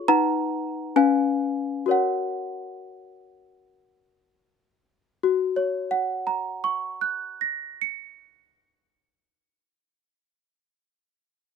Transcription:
Already playing: F4 G#4 C#5 C#6
0.08 D#4 B4 F#5 A#5
0.96 C#4 B4 F5 G#5
1.86 F#4 A#4 C#5
1.91 F#5
5.23 F#4
5.56 C#5
5.91 F#5
6.27 A#5
6.64 C#6
7.01 F#6
7.41 A#6
7.82 C#7

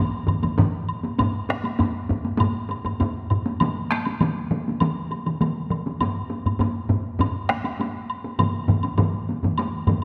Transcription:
0.27 taiko low-mid, taiko mid, taiko high, high woodblock
0.43 taiko low-mid, taiko mid, taiko high, high woodblock
0.58 taiko low-mid, taiko mid, taiko high
0.89 high woodblock
1.03 taiko high
1.19 taiko low-mid, taiko high, high woodblock
1.49 taiko rim, taiko high
1.64 taiko high, high woodblock
1.79 taiko low-mid, taiko high, high woodblock
2.09 taiko low-mid, taiko high
2.25 taiko high
2.38 taiko low-mid, taiko high, high woodblock
2.69 taiko high, high woodblock
2.85 taiko low-mid, taiko high, high woodblock
3.00 taiko low-mid, taiko high, high woodblock
3.30 taiko low-mid, high woodblock
3.46 taiko high
3.60 taiko mid, taiko high, high woodblock
3.91 taiko rim, taiko high
4.05 taiko high, high woodblock
4.20 taiko mid, taiko high, high woodblock
4.51 taiko mid, taiko high
4.68 taiko high
4.80 taiko mid, taiko high, high woodblock
5.11 taiko high, high woodblock
5.26 taiko mid, taiko high, high woodblock
5.41 taiko mid, taiko high, high woodblock
5.70 taiko mid, high woodblock
5.86 taiko high
6.01 taiko low-mid, taiko high, high woodblock
6.30 taiko high
6.46 taiko low-mid, taiko high, high woodblock
6.59 taiko low-mid, taiko high, high woodblock
6.89 taiko low-mid, taiko high
7.19 taiko low-mid, taiko high, high woodblock
7.49 taiko rim, taiko high, high woodblock
7.64 taiko high, high woodblock
7.80 taiko high, high woodblock
8.10 high woodblock
8.25 taiko high
8.39 taiko low-mid, taiko mid, taiko high, high woodblock
8.68 taiko low-mid, taiko mid, taiko high
8.83 taiko high, high woodblock
8.98 taiko low-mid, taiko mid, taiko high, high woodblock
9.29 taiko high
9.43 taiko low-mid, taiko mid, taiko high
9.58 taiko high, high woodblock
9.87 taiko low-mid, taiko mid, taiko high, high woodblock

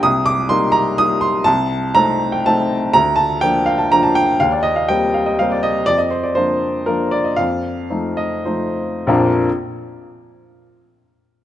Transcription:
0.03 C2 D#6
0.26 D6
0.49 G3 A#3 D#4 C6
0.72 A#5
0.98 G3 A#3 D#4 D#6
1.21 C6
1.44 C2 A5
1.95 A3 C4 D#4 A#5
2.32 G5
2.46 A3 C4 D#4 A5
2.93 D2 A#5
3.16 A5
3.41 F3 A#3 D4 G5
3.66 F5
3.78 A5
3.92 F3 A#3 D4 A#5
4.03 A5
4.15 G5
4.40 D#2 F5
4.52 D5
4.63 D#5
4.76 F5
4.88 G3 A#3 C4 G5
5.14 F5
5.26 D#5
5.39 G3 A#3 C4 F5
5.52 D5
5.63 D#5
5.86 F2 D5
5.98 D#5
6.11 C5
6.23 D5
6.35 F3 A#3 D4 C5
6.86 F3 A#3 D4 A#4
7.11 D5
7.24 D#5
7.36 F2 F5
7.90 F3 A3 D#4
8.17 D#5
8.45 F3 A3 D#4 C5
9.07 A#1 F2 F3 A#3 D4 F4 A#4

